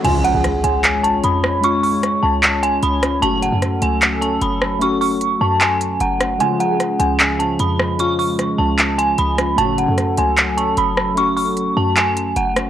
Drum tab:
CC |x-------|--------|--------|--------|
HH |xxxxxxx-|xox-xxxx|xxxxxxx-|xox-xxxx|
CP |----x---|----x---|----x---|----x---|
SD |--r----r|--r----r|--r----r|-------r|

CC |--------|--------|--------|--------|
HH |xxxxxxx-|xox-xxxx|xxxxxxx-|xox-xxxx|
CP |----x---|----x---|----x---|----x---|
SD |--r----r|--r----r|--r----r|-------r|